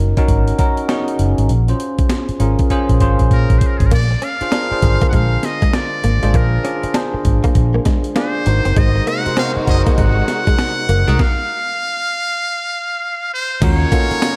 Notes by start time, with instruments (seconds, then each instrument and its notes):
Already playing: fingered electric bass F#1, tine electric piano C#4 D#4 F#4 A#4
0.17 tine electric piano C#4 D#4 F#4 A#4, kick, closed hi-hat
0.28 fingered electric bass G#1, kick, closed hi-hat
0.48 closed hi-hat
0.58 tine electric piano C#4 D#4 F#4 A#4, kick, closed hi-hat
0.77 closed hi-hat
0.89 tine electric piano C#4 D#4 F#4 G#4, snare, closed hi-hat
1.08 closed hi-hat
1.19 fingered electric bass F#1, closed hi-hat
1.38 fingered electric bass G#1, closed hi-hat
1.49 fingered electric bass A#1, closed hi-hat
1.68 tine electric piano C#4 F4 G#4 C5, closed hi-hat
1.80 closed hi-hat
1.98 muted fingered electric bass stroke, kick, closed hi-hat
2.10 snare, closed hi-hat
2.29 muted fingered electric bass stroke, closed hi-hat
2.40 fingered electric bass G#1, tine electric piano C#4 F4 G#4 A#4, closed hi-hat
2.59 kick, closed hi-hat
2.70 tine electric piano C#4 F4 G#4 C5, kick, closed hi-hat
2.89 fingered electric bass A#1, kick, closed hi-hat
3.00 fingered electric bass G#1, tine electric piano C#4 F4 G#4 C5, kick, closed hi-hat
3.19 fingered electric bass A#1, kick, closed hi-hat
3.31 fingered electric bass A#2, muted trumpet A#4, kick, closed hi-hat
3.50 fingered electric bass A#1, kick, closed hi-hat
3.58 muted trumpet C5, kick, closed hi-hat
3.67 muted trumpet A#4
3.78 fingered electric bass G#1, muted trumpet G#4, kick, closed hi-hat
3.86 muted trumpet A#4
3.91 fingered electric bass A#1, clean electric guitar A#3, muted trumpet D5, kick, closed hi-hat, crash
4.11 muted clean electric guitar stroke
4.22 clean electric guitar C#4, muted trumpet F5, closed hi-hat
4.41 tine electric piano D4 F4 G#4 C5, muted fingered electric bass stroke, closed hi-hat
4.52 tine electric piano D4 F4 G#4 A#4, clean electric guitar D4, snare, closed hi-hat
4.71 tine electric piano D4 F4 G#4 C5, muted fingered electric bass stroke
4.82 fingered electric bass G#1, tine electric piano D3 F4 G#4 A#4, muted clean electric guitar stroke, kick, closed hi-hat
4.90 tine electric piano C5
5.01 clean electric guitar A#3, kick, closed hi-hat
5.09 fingered electric bass A#1, clean electric guitar G#3, muted trumpet F#5, kick, closed hi-hat
5.14 muted trumpet F5
5.43 muted trumpet D#5, muted clean electric guitar stroke, snare, closed hi-hat
5.62 clean electric guitar G#3, kick, closed hi-hat
5.73 muted trumpet D5, muted clean electric guitar stroke, snare, closed hi-hat
6.04 fingered electric bass G#1, clean electric guitar A#3, closed hi-hat
6.23 fingered electric bass G#1, clean electric guitar G#3, tine electric piano D4 F4 G#4 C5, closed hi-hat
6.34 fingered electric bass A#1, clean electric guitar A#3, muted trumpet A#4, kick, closed hi-hat
6.64 clean electric guitar C#4, tine electric piano D4 F4 G#4 D5, closed hi-hat
6.83 muted fingered electric bass stroke, muted clean electric guitar stroke, closed hi-hat
6.94 tine electric piano D4 F4 G#4 C5, clean electric guitar D4, snare, closed hi-hat
7.14 muted clean electric guitar stroke, muted fingered electric bass stroke
7.25 fingered electric bass G#1, kick, closed hi-hat
7.44 clean electric guitar A#3, kick, closed hi-hat
7.55 fingered electric bass A#1, muted clean electric guitar stroke, kick, closed hi-hat
7.74 clean electric guitar A#3
7.85 clean electric guitar G#3, kick, snare, closed hi-hat
8.04 closed hi-hat
8.16 clean electric guitar A#3, tine electric piano D4 F4 G#4 D5, muted trumpet C5, snare, closed hi-hat
8.46 fingered electric bass G#1, tine electric piano D#4 F#4 A#4 C5, muted clean electric guitar stroke, closed hi-hat
8.65 fingered electric bass F#1, clean electric guitar C4, closed hi-hat
8.76 fingered electric bass G#1, string section C3 G#3 D#4 F#4, clean electric guitar G#3, muted trumpet D#5, kick, closed hi-hat
8.96 muted clean electric guitar stroke
9.07 clean electric guitar A#3, muted trumpet F#5, closed hi-hat
9.26 tine electric piano D#4 F#4 A#4 C5, muted fingered electric bass stroke, closed hi-hat
9.37 clean electric guitar C4, tine electric piano D#4 F#4 A#4 C5, muted trumpet F5, snare, closed hi-hat
9.56 tine electric piano D#4 F#4 A#4 C5, muted fingered electric bass stroke
9.67 fingered electric bass F#1, tine electric piano D#4 F#4 A#4 D5, muted trumpet D#5, muted clean electric guitar stroke, kick, closed hi-hat
9.75 tine electric piano D#5
9.86 clean electric guitar A#3, kick, closed hi-hat
9.98 fingered electric bass G#1, clean electric guitar G#3, muted trumpet F#5, kick, closed hi-hat
10.28 muted clean electric guitar stroke, snare, closed hi-hat
10.47 clean electric guitar G#3, kick, closed hi-hat
10.59 muted clean electric guitar stroke, snare, closed hi-hat
10.89 fingered electric bass F#1, clean electric guitar A#3, closed hi-hat
11.08 fingered electric bass C2, clean electric guitar G#3, tine electric piano D#4 F#4 A#4 D#5, closed hi-hat
11.19 muted trumpet F5, kick, snare
13.34 muted trumpet C5
13.62 fingered electric bass D#2, string section C#3 A#3 D#4 F5, clean electric guitar G#3, tine electric piano C#4 F4 F#4 A#4, muted trumpet C#5, kick, closed hi-hat, crash, tambourine
13.92 clean electric guitar A#3, tine electric piano C#4 F4 F#4 A4, kick, closed hi-hat, tambourine
14.00 tine electric piano A#4
14.11 muted clean electric guitar stroke, muted fingered electric bass stroke, closed hi-hat
14.22 snare, closed hi-hat, tambourine